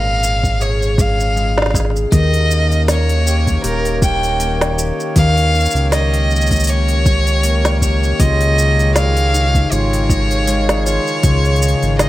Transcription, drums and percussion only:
0.23 shaker
0.43 kick, shaker
0.61 shaker
0.82 shaker
0.98 kick, shaker
1.20 shaker
1.37 shaker
1.58 snare
1.62 snare
1.66 snare
1.70 kick, snare
1.75 snare, shaker
1.80 snare
1.85 snare
1.90 snare
1.96 shaker
2.12 kick, open hi-hat, shaker
2.33 open hi-hat
2.51 shaker
2.71 open hi-hat, shaker
2.88 snare, open hi-hat, shaker
3.09 open hi-hat
3.27 shaker
3.47 kick, open hi-hat, shaker
3.64 open hi-hat, shaker
3.85 open hi-hat, shaker
4.02 kick, shaker
4.23 open hi-hat, shaker
4.40 open hi-hat, shaker
4.61 snare, open hi-hat
4.79 shaker
5.00 shaker
5.16 kick, open hi-hat, shaker
5.37 open hi-hat
5.55 shaker
5.60 shaker
5.65 shaker
5.71 shaker
5.75 open hi-hat, shaker
5.92 snare, open hi-hat, shaker
6.14 open hi-hat
6.31 shaker
6.36 shaker
6.41 shaker
6.47 shaker
6.51 kick, open hi-hat, shaker
6.56 shaker
6.60 shaker
6.64 open hi-hat, shaker
6.68 shaker
6.88 open hi-hat, shaker
7.06 kick, shaker
7.27 open hi-hat, shaker
7.43 open hi-hat, shaker
7.65 snare, open hi-hat
7.82 kick, shaker
8.04 shaker
8.20 kick, open hi-hat, shaker
8.41 open hi-hat
8.58 shaker
8.79 open hi-hat, shaker
8.96 snare, open hi-hat, shaker
9.17 open hi-hat
9.34 shaker
9.55 kick, open hi-hat, shaker
9.72 open hi-hat, shaker
9.93 open hi-hat, shaker
10.10 kick, shaker
10.31 open hi-hat, shaker
10.47 open hi-hat, shaker
10.69 snare, open hi-hat
10.86 shaker
11.07 shaker
11.23 kick, open hi-hat, shaker
11.45 open hi-hat, shaker
11.56 open hi-hat
11.62 shaker
11.68 open hi-hat
11.82 open hi-hat, shaker
11.99 snare, open hi-hat, shaker

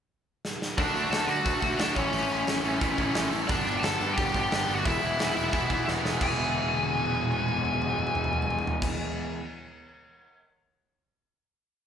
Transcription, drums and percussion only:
0.45 snare
0.62 snare
0.78 kick, open hi-hat
0.95 open hi-hat
1.12 snare, open hi-hat
1.29 open hi-hat
1.46 kick, open hi-hat
1.62 kick, open hi-hat
1.79 snare, open hi-hat
1.96 kick, open hi-hat
2.13 open hi-hat
2.30 open hi-hat
2.47 snare, open hi-hat
2.65 open hi-hat
2.81 kick, open hi-hat
2.98 kick, open hi-hat
3.14 snare, open hi-hat
3.33 open hi-hat
3.49 kick, open hi-hat
3.67 open hi-hat
3.83 snare, open hi-hat
4.01 open hi-hat
4.18 kick, open hi-hat
4.34 kick, open hi-hat
4.51 snare, open hi-hat
4.68 open hi-hat
4.85 kick, open hi-hat
5.03 open hi-hat
5.19 snare, open hi-hat
5.37 open hi-hat
5.53 kick, open hi-hat
5.70 kick, open hi-hat
5.88 snare
6.05 snare
6.21 kick, crash
6.38 high tom
6.46 high tom
6.55 high tom
6.62 high tom
6.71 high tom
6.80 high tom
6.89 high tom
6.97 mid tom
7.06 mid tom
7.15 mid tom
7.24 mid tom
7.32 mid tom
7.40 mid tom
7.48 mid tom
7.57 mid tom
7.65 mid tom
7.73 mid tom
7.82 mid tom
7.90 mid tom
7.99 mid tom
8.07 mid tom
8.15 floor tom
8.24 floor tom
8.33 floor tom
8.42 floor tom
8.50 floor tom
8.59 floor tom
8.67 floor tom
8.82 kick, crash

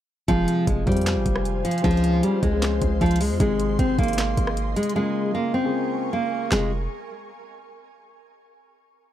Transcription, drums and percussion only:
0.28 kick, closed hi-hat
0.48 closed hi-hat
0.67 kick, closed hi-hat
0.87 kick, closed hi-hat
0.92 closed hi-hat
0.97 closed hi-hat
1.01 closed hi-hat
1.06 snare, clap, closed hi-hat
1.26 kick, closed hi-hat
1.36 cross-stick
1.45 closed hi-hat
1.65 closed hi-hat
1.71 closed hi-hat
1.78 closed hi-hat
1.84 kick, closed hi-hat
1.91 closed hi-hat
1.97 closed hi-hat
2.04 closed hi-hat
2.23 closed hi-hat
2.43 kick, closed hi-hat
2.62 snare, clap, closed hi-hat
2.82 kick, closed hi-hat
3.01 kick, closed hi-hat
3.06 closed hi-hat
3.11 closed hi-hat
3.16 closed hi-hat
3.21 open hi-hat
3.40 kick, closed hi-hat
3.60 closed hi-hat
3.79 kick, closed hi-hat
3.99 kick, closed hi-hat
4.03 closed hi-hat
4.08 closed hi-hat
4.13 closed hi-hat
4.18 snare, clap, closed hi-hat
4.37 kick, closed hi-hat
4.47 cross-stick
4.57 closed hi-hat
4.76 closed hi-hat
4.83 closed hi-hat
4.89 closed hi-hat
6.52 snare, clap

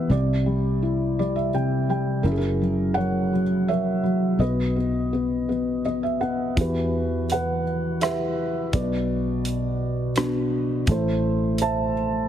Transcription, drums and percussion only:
6.57 kick, closed hi-hat
7.30 closed hi-hat
8.01 cross-stick, closed hi-hat
8.73 kick, closed hi-hat
9.45 closed hi-hat
10.16 cross-stick, closed hi-hat
10.87 kick, closed hi-hat
11.58 closed hi-hat

